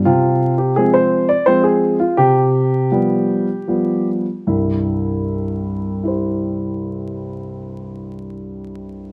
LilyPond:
<<
  \new Staff \with { instrumentName = "Grand piano" } { \time 3/4 \key c \major \tempo 4 = 77 << { f'8. g'16 aes'16 c''8 d''16 c''16 aes'8 f'16 | g'2~ g'8 r8 | e'2.~ | e'2. | } \\ { r2. | r2. | r2 <e' g' c''>4~ | <e' g' c''>2. | } >> }
  \new Staff \with { instrumentName = "Grand piano" } { \clef bass \time 3/4 \key c \major c4 <f aes c'>4 <f aes c'>4 | c4 <f g b>4 <f g b>4 | <c, g,>2.~ | <c, g,>2. | }
>>